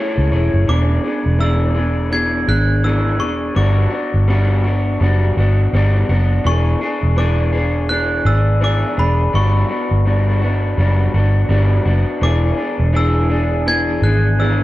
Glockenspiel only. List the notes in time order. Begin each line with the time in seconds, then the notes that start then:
0.69 D6
1.41 E6
2.13 G#6
2.49 F#6
2.84 E6
3.20 C#6
3.56 D6
6.47 C#6
7.18 D6
7.89 F#6
8.27 E6
8.64 D6
8.99 B5
9.35 C#6
12.23 D6
12.97 E6
13.68 G#6
14.04 F#6
14.40 E6